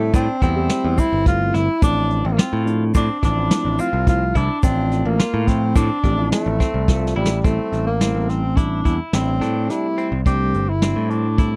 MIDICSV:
0, 0, Header, 1, 6, 480
1, 0, Start_track
1, 0, Tempo, 562324
1, 1557, Time_signature, 5, 2, 24, 8
1, 9869, End_track
2, 0, Start_track
2, 0, Title_t, "Clean electric guitar"
2, 0, Program_c, 0, 27
2, 118, Note_on_c, 0, 62, 75
2, 310, Note_off_c, 0, 62, 0
2, 358, Note_on_c, 0, 64, 69
2, 741, Note_off_c, 0, 64, 0
2, 835, Note_on_c, 0, 60, 76
2, 1219, Note_off_c, 0, 60, 0
2, 1315, Note_on_c, 0, 64, 71
2, 1508, Note_off_c, 0, 64, 0
2, 1555, Note_on_c, 0, 62, 82
2, 1939, Note_off_c, 0, 62, 0
2, 2035, Note_on_c, 0, 65, 83
2, 2419, Note_off_c, 0, 65, 0
2, 2517, Note_on_c, 0, 60, 78
2, 2708, Note_off_c, 0, 60, 0
2, 2757, Note_on_c, 0, 62, 72
2, 3140, Note_off_c, 0, 62, 0
2, 3234, Note_on_c, 0, 60, 73
2, 3618, Note_off_c, 0, 60, 0
2, 3715, Note_on_c, 0, 64, 69
2, 3907, Note_off_c, 0, 64, 0
2, 3957, Note_on_c, 0, 62, 86
2, 4340, Note_off_c, 0, 62, 0
2, 4435, Note_on_c, 0, 65, 75
2, 4818, Note_off_c, 0, 65, 0
2, 4916, Note_on_c, 0, 60, 79
2, 5107, Note_off_c, 0, 60, 0
2, 5153, Note_on_c, 0, 62, 71
2, 5537, Note_off_c, 0, 62, 0
2, 5635, Note_on_c, 0, 60, 72
2, 6019, Note_off_c, 0, 60, 0
2, 6114, Note_on_c, 0, 64, 68
2, 6306, Note_off_c, 0, 64, 0
2, 6355, Note_on_c, 0, 60, 83
2, 6738, Note_off_c, 0, 60, 0
2, 6838, Note_on_c, 0, 60, 74
2, 7220, Note_off_c, 0, 60, 0
2, 7316, Note_on_c, 0, 64, 64
2, 7508, Note_off_c, 0, 64, 0
2, 7557, Note_on_c, 0, 64, 65
2, 7940, Note_off_c, 0, 64, 0
2, 8036, Note_on_c, 0, 62, 68
2, 8419, Note_off_c, 0, 62, 0
2, 8518, Note_on_c, 0, 60, 68
2, 8709, Note_off_c, 0, 60, 0
2, 8760, Note_on_c, 0, 60, 82
2, 9142, Note_off_c, 0, 60, 0
2, 9240, Note_on_c, 0, 60, 72
2, 9622, Note_off_c, 0, 60, 0
2, 9723, Note_on_c, 0, 64, 71
2, 9869, Note_off_c, 0, 64, 0
2, 9869, End_track
3, 0, Start_track
3, 0, Title_t, "Tenor saxophone"
3, 0, Program_c, 1, 66
3, 0, Note_on_c, 1, 57, 85
3, 124, Note_off_c, 1, 57, 0
3, 131, Note_on_c, 1, 60, 96
3, 348, Note_off_c, 1, 60, 0
3, 369, Note_on_c, 1, 60, 88
3, 848, Note_on_c, 1, 64, 100
3, 861, Note_off_c, 1, 60, 0
3, 1083, Note_off_c, 1, 64, 0
3, 1088, Note_on_c, 1, 65, 97
3, 1326, Note_on_c, 1, 64, 86
3, 1338, Note_off_c, 1, 65, 0
3, 1561, Note_off_c, 1, 64, 0
3, 1568, Note_on_c, 1, 62, 111
3, 1930, Note_on_c, 1, 60, 80
3, 1943, Note_off_c, 1, 62, 0
3, 1983, Note_on_c, 1, 58, 71
3, 1995, Note_off_c, 1, 60, 0
3, 2051, Note_on_c, 1, 60, 78
3, 2064, Note_off_c, 1, 58, 0
3, 2285, Note_off_c, 1, 60, 0
3, 2532, Note_on_c, 1, 62, 97
3, 2748, Note_off_c, 1, 62, 0
3, 2773, Note_on_c, 1, 62, 90
3, 3245, Note_on_c, 1, 65, 101
3, 3258, Note_off_c, 1, 62, 0
3, 3480, Note_off_c, 1, 65, 0
3, 3487, Note_on_c, 1, 65, 89
3, 3728, Note_on_c, 1, 62, 90
3, 3741, Note_off_c, 1, 65, 0
3, 3954, Note_off_c, 1, 62, 0
3, 3959, Note_on_c, 1, 60, 92
3, 4319, Note_on_c, 1, 58, 85
3, 4332, Note_off_c, 1, 60, 0
3, 4674, Note_on_c, 1, 60, 81
3, 4687, Note_off_c, 1, 58, 0
3, 4918, Note_on_c, 1, 62, 92
3, 4931, Note_off_c, 1, 60, 0
3, 5384, Note_off_c, 1, 62, 0
3, 5389, Note_on_c, 1, 57, 76
3, 6078, Note_off_c, 1, 57, 0
3, 6115, Note_on_c, 1, 55, 71
3, 6359, Note_on_c, 1, 57, 75
3, 6371, Note_off_c, 1, 55, 0
3, 6709, Note_off_c, 1, 57, 0
3, 6714, Note_on_c, 1, 58, 72
3, 7078, Note_on_c, 1, 60, 75
3, 7091, Note_off_c, 1, 58, 0
3, 7314, Note_on_c, 1, 62, 81
3, 7327, Note_off_c, 1, 60, 0
3, 7656, Note_off_c, 1, 62, 0
3, 7801, Note_on_c, 1, 60, 89
3, 8282, Note_on_c, 1, 64, 87
3, 8295, Note_off_c, 1, 60, 0
3, 8639, Note_off_c, 1, 64, 0
3, 8765, Note_on_c, 1, 67, 96
3, 9124, Note_on_c, 1, 64, 83
3, 9137, Note_off_c, 1, 67, 0
3, 9478, Note_on_c, 1, 62, 78
3, 9490, Note_off_c, 1, 64, 0
3, 9848, Note_off_c, 1, 62, 0
3, 9869, End_track
4, 0, Start_track
4, 0, Title_t, "Tine electric piano"
4, 0, Program_c, 2, 4
4, 0, Note_on_c, 2, 55, 73
4, 0, Note_on_c, 2, 57, 72
4, 0, Note_on_c, 2, 60, 69
4, 0, Note_on_c, 2, 64, 82
4, 219, Note_off_c, 2, 55, 0
4, 219, Note_off_c, 2, 57, 0
4, 220, Note_off_c, 2, 60, 0
4, 221, Note_off_c, 2, 64, 0
4, 356, Note_on_c, 2, 55, 76
4, 358, Note_on_c, 2, 57, 64
4, 358, Note_on_c, 2, 64, 82
4, 359, Note_on_c, 2, 60, 67
4, 442, Note_off_c, 2, 55, 0
4, 443, Note_off_c, 2, 57, 0
4, 443, Note_off_c, 2, 64, 0
4, 444, Note_off_c, 2, 60, 0
4, 475, Note_on_c, 2, 55, 80
4, 475, Note_on_c, 2, 57, 67
4, 476, Note_on_c, 2, 60, 70
4, 479, Note_on_c, 2, 67, 87
4, 902, Note_off_c, 2, 55, 0
4, 902, Note_off_c, 2, 57, 0
4, 902, Note_off_c, 2, 60, 0
4, 904, Note_off_c, 2, 67, 0
4, 1076, Note_on_c, 2, 57, 64
4, 1078, Note_on_c, 2, 55, 74
4, 1079, Note_on_c, 2, 60, 64
4, 1081, Note_on_c, 2, 64, 74
4, 1417, Note_off_c, 2, 57, 0
4, 1418, Note_off_c, 2, 55, 0
4, 1418, Note_off_c, 2, 60, 0
4, 1420, Note_off_c, 2, 64, 0
4, 1551, Note_on_c, 2, 53, 77
4, 1553, Note_on_c, 2, 57, 70
4, 1554, Note_on_c, 2, 60, 66
4, 1555, Note_on_c, 2, 64, 78
4, 2065, Note_off_c, 2, 53, 0
4, 2065, Note_off_c, 2, 57, 0
4, 2066, Note_off_c, 2, 60, 0
4, 2067, Note_off_c, 2, 64, 0
4, 2268, Note_on_c, 2, 53, 73
4, 2268, Note_on_c, 2, 57, 66
4, 2272, Note_on_c, 2, 60, 71
4, 2273, Note_on_c, 2, 62, 84
4, 2613, Note_off_c, 2, 53, 0
4, 2613, Note_off_c, 2, 57, 0
4, 2615, Note_off_c, 2, 60, 0
4, 2615, Note_off_c, 2, 62, 0
4, 2752, Note_on_c, 2, 53, 72
4, 2753, Note_on_c, 2, 57, 66
4, 2753, Note_on_c, 2, 60, 71
4, 2755, Note_on_c, 2, 64, 84
4, 2839, Note_off_c, 2, 53, 0
4, 2840, Note_off_c, 2, 57, 0
4, 2840, Note_off_c, 2, 60, 0
4, 2841, Note_off_c, 2, 64, 0
4, 2867, Note_on_c, 2, 53, 76
4, 2871, Note_on_c, 2, 57, 72
4, 2873, Note_on_c, 2, 60, 72
4, 2875, Note_on_c, 2, 64, 82
4, 3297, Note_off_c, 2, 53, 0
4, 3299, Note_off_c, 2, 57, 0
4, 3300, Note_off_c, 2, 60, 0
4, 3301, Note_off_c, 2, 64, 0
4, 3471, Note_on_c, 2, 53, 74
4, 3473, Note_on_c, 2, 57, 68
4, 3473, Note_on_c, 2, 60, 66
4, 3475, Note_on_c, 2, 64, 82
4, 3814, Note_off_c, 2, 53, 0
4, 3815, Note_off_c, 2, 57, 0
4, 3815, Note_off_c, 2, 60, 0
4, 3816, Note_off_c, 2, 64, 0
4, 3950, Note_on_c, 2, 53, 73
4, 3953, Note_on_c, 2, 57, 63
4, 3954, Note_on_c, 2, 60, 67
4, 3956, Note_on_c, 2, 65, 78
4, 4464, Note_off_c, 2, 53, 0
4, 4465, Note_off_c, 2, 57, 0
4, 4465, Note_off_c, 2, 60, 0
4, 4466, Note_off_c, 2, 65, 0
4, 4670, Note_on_c, 2, 53, 74
4, 4673, Note_on_c, 2, 57, 71
4, 4675, Note_on_c, 2, 60, 66
4, 4676, Note_on_c, 2, 64, 81
4, 5013, Note_off_c, 2, 53, 0
4, 5015, Note_off_c, 2, 57, 0
4, 5016, Note_off_c, 2, 60, 0
4, 5016, Note_off_c, 2, 64, 0
4, 5153, Note_on_c, 2, 53, 75
4, 5153, Note_on_c, 2, 57, 68
4, 5155, Note_on_c, 2, 67, 83
4, 5157, Note_on_c, 2, 60, 64
4, 5239, Note_off_c, 2, 53, 0
4, 5239, Note_off_c, 2, 57, 0
4, 5241, Note_off_c, 2, 60, 0
4, 5241, Note_off_c, 2, 67, 0
4, 5272, Note_on_c, 2, 53, 78
4, 5274, Note_on_c, 2, 57, 71
4, 5276, Note_on_c, 2, 64, 83
4, 5277, Note_on_c, 2, 60, 69
4, 5699, Note_off_c, 2, 53, 0
4, 5700, Note_off_c, 2, 57, 0
4, 5701, Note_off_c, 2, 64, 0
4, 5702, Note_off_c, 2, 60, 0
4, 5877, Note_on_c, 2, 53, 70
4, 5880, Note_on_c, 2, 57, 66
4, 5882, Note_on_c, 2, 60, 60
4, 5885, Note_on_c, 2, 65, 81
4, 6217, Note_off_c, 2, 53, 0
4, 6218, Note_off_c, 2, 57, 0
4, 6219, Note_off_c, 2, 60, 0
4, 6221, Note_off_c, 2, 65, 0
4, 6353, Note_on_c, 2, 55, 73
4, 6355, Note_on_c, 2, 57, 70
4, 6357, Note_on_c, 2, 64, 82
4, 6358, Note_on_c, 2, 60, 64
4, 6695, Note_off_c, 2, 55, 0
4, 6696, Note_off_c, 2, 57, 0
4, 6697, Note_off_c, 2, 60, 0
4, 6697, Note_off_c, 2, 64, 0
4, 6831, Note_on_c, 2, 55, 69
4, 6833, Note_on_c, 2, 57, 64
4, 6836, Note_on_c, 2, 60, 63
4, 6836, Note_on_c, 2, 64, 72
4, 7174, Note_off_c, 2, 55, 0
4, 7175, Note_off_c, 2, 57, 0
4, 7176, Note_off_c, 2, 60, 0
4, 7177, Note_off_c, 2, 64, 0
4, 7316, Note_on_c, 2, 55, 63
4, 7316, Note_on_c, 2, 57, 57
4, 7318, Note_on_c, 2, 60, 59
4, 7319, Note_on_c, 2, 64, 69
4, 7656, Note_off_c, 2, 55, 0
4, 7656, Note_off_c, 2, 57, 0
4, 7657, Note_off_c, 2, 60, 0
4, 7658, Note_off_c, 2, 64, 0
4, 7793, Note_on_c, 2, 57, 57
4, 7794, Note_on_c, 2, 55, 61
4, 7796, Note_on_c, 2, 60, 58
4, 7798, Note_on_c, 2, 62, 72
4, 8135, Note_off_c, 2, 57, 0
4, 8136, Note_off_c, 2, 55, 0
4, 8137, Note_off_c, 2, 60, 0
4, 8138, Note_off_c, 2, 62, 0
4, 8273, Note_on_c, 2, 55, 73
4, 8274, Note_on_c, 2, 57, 69
4, 8275, Note_on_c, 2, 60, 68
4, 8277, Note_on_c, 2, 67, 85
4, 8615, Note_off_c, 2, 55, 0
4, 8616, Note_off_c, 2, 57, 0
4, 8617, Note_off_c, 2, 60, 0
4, 8617, Note_off_c, 2, 67, 0
4, 8757, Note_on_c, 2, 57, 70
4, 8758, Note_on_c, 2, 55, 77
4, 8760, Note_on_c, 2, 60, 69
4, 8760, Note_on_c, 2, 62, 87
4, 9098, Note_off_c, 2, 55, 0
4, 9098, Note_off_c, 2, 57, 0
4, 9099, Note_off_c, 2, 60, 0
4, 9099, Note_off_c, 2, 62, 0
4, 9234, Note_on_c, 2, 55, 68
4, 9237, Note_on_c, 2, 57, 63
4, 9238, Note_on_c, 2, 60, 65
4, 9240, Note_on_c, 2, 62, 78
4, 9576, Note_off_c, 2, 55, 0
4, 9577, Note_off_c, 2, 57, 0
4, 9578, Note_off_c, 2, 60, 0
4, 9579, Note_off_c, 2, 62, 0
4, 9719, Note_on_c, 2, 55, 61
4, 9721, Note_on_c, 2, 57, 60
4, 9721, Note_on_c, 2, 60, 60
4, 9724, Note_on_c, 2, 64, 71
4, 9869, Note_off_c, 2, 55, 0
4, 9869, Note_off_c, 2, 57, 0
4, 9869, Note_off_c, 2, 60, 0
4, 9869, Note_off_c, 2, 64, 0
4, 9869, End_track
5, 0, Start_track
5, 0, Title_t, "Picked electric bass"
5, 0, Program_c, 3, 34
5, 0, Note_on_c, 3, 45, 87
5, 91, Note_off_c, 3, 45, 0
5, 117, Note_on_c, 3, 45, 95
5, 228, Note_off_c, 3, 45, 0
5, 357, Note_on_c, 3, 40, 85
5, 578, Note_off_c, 3, 40, 0
5, 721, Note_on_c, 3, 40, 78
5, 830, Note_off_c, 3, 40, 0
5, 960, Note_on_c, 3, 31, 81
5, 1290, Note_off_c, 3, 31, 0
5, 1318, Note_on_c, 3, 31, 99
5, 1428, Note_off_c, 3, 31, 0
5, 1557, Note_on_c, 3, 33, 97
5, 1889, Note_off_c, 3, 33, 0
5, 1919, Note_on_c, 3, 33, 95
5, 2028, Note_off_c, 3, 33, 0
5, 2158, Note_on_c, 3, 45, 93
5, 2489, Note_off_c, 3, 45, 0
5, 2517, Note_on_c, 3, 45, 92
5, 2627, Note_off_c, 3, 45, 0
5, 2757, Note_on_c, 3, 33, 80
5, 2978, Note_off_c, 3, 33, 0
5, 3116, Note_on_c, 3, 33, 78
5, 3227, Note_off_c, 3, 33, 0
5, 3354, Note_on_c, 3, 36, 82
5, 3687, Note_off_c, 3, 36, 0
5, 3715, Note_on_c, 3, 36, 101
5, 3826, Note_off_c, 3, 36, 0
5, 3954, Note_on_c, 3, 33, 94
5, 4286, Note_off_c, 3, 33, 0
5, 4314, Note_on_c, 3, 33, 97
5, 4425, Note_off_c, 3, 33, 0
5, 4556, Note_on_c, 3, 45, 88
5, 4887, Note_off_c, 3, 45, 0
5, 4913, Note_on_c, 3, 45, 89
5, 5025, Note_off_c, 3, 45, 0
5, 5154, Note_on_c, 3, 33, 81
5, 5376, Note_off_c, 3, 33, 0
5, 5516, Note_on_c, 3, 33, 80
5, 5626, Note_off_c, 3, 33, 0
5, 5755, Note_on_c, 3, 36, 78
5, 5866, Note_off_c, 3, 36, 0
5, 5874, Note_on_c, 3, 36, 72
5, 6091, Note_off_c, 3, 36, 0
5, 6110, Note_on_c, 3, 33, 80
5, 6329, Note_off_c, 3, 33, 0
5, 6355, Note_on_c, 3, 33, 93
5, 6466, Note_off_c, 3, 33, 0
5, 6594, Note_on_c, 3, 33, 77
5, 6926, Note_off_c, 3, 33, 0
5, 6954, Note_on_c, 3, 33, 80
5, 7521, Note_off_c, 3, 33, 0
5, 7557, Note_on_c, 3, 40, 68
5, 7667, Note_off_c, 3, 40, 0
5, 7796, Note_on_c, 3, 33, 93
5, 8017, Note_off_c, 3, 33, 0
5, 8034, Note_on_c, 3, 45, 75
5, 8256, Note_off_c, 3, 45, 0
5, 8637, Note_on_c, 3, 36, 75
5, 8747, Note_off_c, 3, 36, 0
5, 8755, Note_on_c, 3, 36, 86
5, 8977, Note_off_c, 3, 36, 0
5, 8999, Note_on_c, 3, 31, 83
5, 9330, Note_off_c, 3, 31, 0
5, 9357, Note_on_c, 3, 45, 71
5, 9869, Note_off_c, 3, 45, 0
5, 9869, End_track
6, 0, Start_track
6, 0, Title_t, "Drums"
6, 114, Note_on_c, 9, 42, 79
6, 117, Note_on_c, 9, 36, 102
6, 120, Note_on_c, 9, 82, 56
6, 199, Note_off_c, 9, 42, 0
6, 202, Note_off_c, 9, 36, 0
6, 206, Note_off_c, 9, 82, 0
6, 356, Note_on_c, 9, 36, 74
6, 356, Note_on_c, 9, 42, 55
6, 441, Note_off_c, 9, 42, 0
6, 442, Note_off_c, 9, 36, 0
6, 592, Note_on_c, 9, 38, 106
6, 592, Note_on_c, 9, 42, 70
6, 678, Note_off_c, 9, 38, 0
6, 678, Note_off_c, 9, 42, 0
6, 835, Note_on_c, 9, 42, 54
6, 836, Note_on_c, 9, 36, 67
6, 838, Note_on_c, 9, 82, 45
6, 920, Note_off_c, 9, 42, 0
6, 922, Note_off_c, 9, 36, 0
6, 923, Note_off_c, 9, 82, 0
6, 1075, Note_on_c, 9, 38, 33
6, 1075, Note_on_c, 9, 42, 74
6, 1076, Note_on_c, 9, 36, 97
6, 1161, Note_off_c, 9, 36, 0
6, 1161, Note_off_c, 9, 38, 0
6, 1161, Note_off_c, 9, 42, 0
6, 1316, Note_on_c, 9, 38, 31
6, 1316, Note_on_c, 9, 42, 48
6, 1402, Note_off_c, 9, 38, 0
6, 1402, Note_off_c, 9, 42, 0
6, 1555, Note_on_c, 9, 36, 115
6, 1555, Note_on_c, 9, 42, 81
6, 1559, Note_on_c, 9, 82, 56
6, 1640, Note_off_c, 9, 42, 0
6, 1641, Note_off_c, 9, 36, 0
6, 1644, Note_off_c, 9, 82, 0
6, 1795, Note_on_c, 9, 42, 56
6, 1880, Note_off_c, 9, 42, 0
6, 2038, Note_on_c, 9, 38, 106
6, 2038, Note_on_c, 9, 42, 85
6, 2123, Note_off_c, 9, 38, 0
6, 2123, Note_off_c, 9, 42, 0
6, 2278, Note_on_c, 9, 42, 65
6, 2363, Note_off_c, 9, 42, 0
6, 2515, Note_on_c, 9, 82, 58
6, 2516, Note_on_c, 9, 36, 106
6, 2517, Note_on_c, 9, 42, 85
6, 2600, Note_off_c, 9, 82, 0
6, 2601, Note_off_c, 9, 36, 0
6, 2602, Note_off_c, 9, 42, 0
6, 2756, Note_on_c, 9, 36, 72
6, 2756, Note_on_c, 9, 38, 35
6, 2756, Note_on_c, 9, 42, 64
6, 2760, Note_on_c, 9, 82, 19
6, 2841, Note_off_c, 9, 36, 0
6, 2841, Note_off_c, 9, 38, 0
6, 2841, Note_off_c, 9, 42, 0
6, 2845, Note_off_c, 9, 82, 0
6, 2994, Note_on_c, 9, 38, 100
6, 2994, Note_on_c, 9, 42, 79
6, 3080, Note_off_c, 9, 38, 0
6, 3080, Note_off_c, 9, 42, 0
6, 3235, Note_on_c, 9, 42, 63
6, 3235, Note_on_c, 9, 82, 47
6, 3320, Note_off_c, 9, 82, 0
6, 3321, Note_off_c, 9, 42, 0
6, 3474, Note_on_c, 9, 36, 96
6, 3474, Note_on_c, 9, 38, 30
6, 3474, Note_on_c, 9, 42, 84
6, 3559, Note_off_c, 9, 36, 0
6, 3559, Note_off_c, 9, 38, 0
6, 3559, Note_off_c, 9, 42, 0
6, 3713, Note_on_c, 9, 42, 59
6, 3714, Note_on_c, 9, 36, 66
6, 3798, Note_off_c, 9, 42, 0
6, 3799, Note_off_c, 9, 36, 0
6, 3952, Note_on_c, 9, 42, 81
6, 3954, Note_on_c, 9, 36, 113
6, 3954, Note_on_c, 9, 82, 52
6, 4037, Note_off_c, 9, 42, 0
6, 4039, Note_off_c, 9, 36, 0
6, 4039, Note_off_c, 9, 82, 0
6, 4195, Note_on_c, 9, 38, 34
6, 4195, Note_on_c, 9, 42, 57
6, 4281, Note_off_c, 9, 38, 0
6, 4281, Note_off_c, 9, 42, 0
6, 4434, Note_on_c, 9, 38, 107
6, 4434, Note_on_c, 9, 42, 79
6, 4519, Note_off_c, 9, 38, 0
6, 4519, Note_off_c, 9, 42, 0
6, 4674, Note_on_c, 9, 36, 70
6, 4674, Note_on_c, 9, 38, 35
6, 4674, Note_on_c, 9, 42, 57
6, 4759, Note_off_c, 9, 36, 0
6, 4759, Note_off_c, 9, 38, 0
6, 4759, Note_off_c, 9, 42, 0
6, 4911, Note_on_c, 9, 42, 81
6, 4913, Note_on_c, 9, 36, 108
6, 4917, Note_on_c, 9, 82, 58
6, 4996, Note_off_c, 9, 42, 0
6, 4999, Note_off_c, 9, 36, 0
6, 5002, Note_off_c, 9, 82, 0
6, 5153, Note_on_c, 9, 36, 74
6, 5153, Note_on_c, 9, 42, 58
6, 5239, Note_off_c, 9, 36, 0
6, 5239, Note_off_c, 9, 42, 0
6, 5396, Note_on_c, 9, 38, 109
6, 5396, Note_on_c, 9, 42, 76
6, 5481, Note_off_c, 9, 38, 0
6, 5481, Note_off_c, 9, 42, 0
6, 5635, Note_on_c, 9, 36, 65
6, 5637, Note_on_c, 9, 38, 32
6, 5637, Note_on_c, 9, 42, 56
6, 5720, Note_off_c, 9, 36, 0
6, 5723, Note_off_c, 9, 38, 0
6, 5723, Note_off_c, 9, 42, 0
6, 5873, Note_on_c, 9, 38, 56
6, 5874, Note_on_c, 9, 36, 96
6, 5958, Note_off_c, 9, 38, 0
6, 5959, Note_off_c, 9, 36, 0
6, 6034, Note_on_c, 9, 38, 62
6, 6120, Note_off_c, 9, 38, 0
6, 6192, Note_on_c, 9, 38, 88
6, 6277, Note_off_c, 9, 38, 0
6, 6353, Note_on_c, 9, 42, 77
6, 6355, Note_on_c, 9, 36, 100
6, 6439, Note_off_c, 9, 42, 0
6, 6440, Note_off_c, 9, 36, 0
6, 6596, Note_on_c, 9, 38, 30
6, 6596, Note_on_c, 9, 42, 59
6, 6681, Note_off_c, 9, 38, 0
6, 6681, Note_off_c, 9, 42, 0
6, 6835, Note_on_c, 9, 38, 92
6, 6835, Note_on_c, 9, 42, 75
6, 6921, Note_off_c, 9, 38, 0
6, 6921, Note_off_c, 9, 42, 0
6, 7077, Note_on_c, 9, 38, 32
6, 7077, Note_on_c, 9, 42, 55
6, 7163, Note_off_c, 9, 38, 0
6, 7163, Note_off_c, 9, 42, 0
6, 7315, Note_on_c, 9, 36, 100
6, 7315, Note_on_c, 9, 42, 79
6, 7400, Note_off_c, 9, 42, 0
6, 7401, Note_off_c, 9, 36, 0
6, 7555, Note_on_c, 9, 36, 71
6, 7556, Note_on_c, 9, 42, 55
6, 7641, Note_off_c, 9, 36, 0
6, 7642, Note_off_c, 9, 42, 0
6, 7794, Note_on_c, 9, 38, 92
6, 7794, Note_on_c, 9, 42, 74
6, 7880, Note_off_c, 9, 38, 0
6, 7880, Note_off_c, 9, 42, 0
6, 8037, Note_on_c, 9, 38, 29
6, 8037, Note_on_c, 9, 42, 53
6, 8122, Note_off_c, 9, 38, 0
6, 8122, Note_off_c, 9, 42, 0
6, 8276, Note_on_c, 9, 38, 32
6, 8276, Note_on_c, 9, 42, 71
6, 8361, Note_off_c, 9, 38, 0
6, 8361, Note_off_c, 9, 42, 0
6, 8517, Note_on_c, 9, 42, 47
6, 8602, Note_off_c, 9, 42, 0
6, 8756, Note_on_c, 9, 36, 95
6, 8757, Note_on_c, 9, 42, 75
6, 8842, Note_off_c, 9, 36, 0
6, 8842, Note_off_c, 9, 42, 0
6, 8998, Note_on_c, 9, 42, 53
6, 9083, Note_off_c, 9, 42, 0
6, 9235, Note_on_c, 9, 38, 90
6, 9235, Note_on_c, 9, 42, 66
6, 9320, Note_off_c, 9, 38, 0
6, 9320, Note_off_c, 9, 42, 0
6, 9477, Note_on_c, 9, 42, 52
6, 9562, Note_off_c, 9, 42, 0
6, 9717, Note_on_c, 9, 36, 101
6, 9717, Note_on_c, 9, 42, 74
6, 9802, Note_off_c, 9, 36, 0
6, 9802, Note_off_c, 9, 42, 0
6, 9869, End_track
0, 0, End_of_file